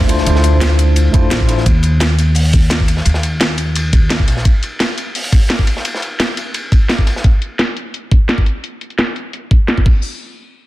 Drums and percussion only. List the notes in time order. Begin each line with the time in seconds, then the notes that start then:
0.01 kick
0.09 closed hi-hat, ride
0.18 snare
0.26 closed hi-hat, ride
0.35 snare
0.44 closed hi-hat, ride
0.61 snare, closed hi-hat, ride
0.79 closed hi-hat, ride
0.96 closed hi-hat, ride
1.14 kick, closed hi-hat, ride
1.31 snare, closed hi-hat, ride
1.40 kick
1.48 snare, closed hi-hat, ride
1.57 snare
1.66 kick, closed hi-hat, ride
1.83 closed hi-hat, ride
2.00 snare, closed hi-hat, ride
2.19 closed hi-hat, ride
2.35 closed hi-hat, open hi-hat
2.45 ride
2.53 kick, closed hi-hat, ride
2.70 snare, closed hi-hat, ride
2.80 kick
2.88 closed hi-hat, ride
2.97 snare
3.05 closed hi-hat, ride
3.14 snare
3.23 closed hi-hat, ride
3.40 snare, closed hi-hat, ride
3.58 closed hi-hat, ride
3.76 closed hi-hat, ride
3.93 kick, closed hi-hat, ride
4.10 snare, closed hi-hat, ride
4.20 kick
4.28 snare, closed hi-hat, ride
4.37 snare
4.45 kick, closed hi-hat, ride
4.63 closed hi-hat, ride
4.80 snare, closed hi-hat, ride
4.98 closed hi-hat, ride
5.15 closed hi-hat, open hi-hat
5.24 ride
5.32 kick, closed hi-hat, ride
5.50 snare, closed hi-hat, ride
5.59 kick
5.67 closed hi-hat, ride
5.77 snare
5.85 closed hi-hat, ride
5.94 snare
6.02 closed hi-hat, ride
6.20 snare, closed hi-hat, ride
6.37 closed hi-hat, ride
6.54 closed hi-hat, ride
6.72 kick, closed hi-hat, ride
6.89 snare, closed hi-hat, ride
6.99 kick
7.06 snare, closed hi-hat, ride
7.16 snare
7.24 kick, closed hi-hat
7.42 closed hi-hat
7.59 snare, closed hi-hat
7.77 closed hi-hat
7.94 closed hi-hat
8.11 kick, closed hi-hat
8.29 snare, closed hi-hat
8.38 kick
8.46 closed hi-hat
8.64 closed hi-hat
8.81 closed hi-hat
8.90 closed hi-hat
8.99 snare, closed hi-hat
9.16 closed hi-hat
9.33 closed hi-hat
9.51 kick, closed hi-hat
9.68 snare, closed hi-hat
9.78 kick, snare
9.86 kick, crash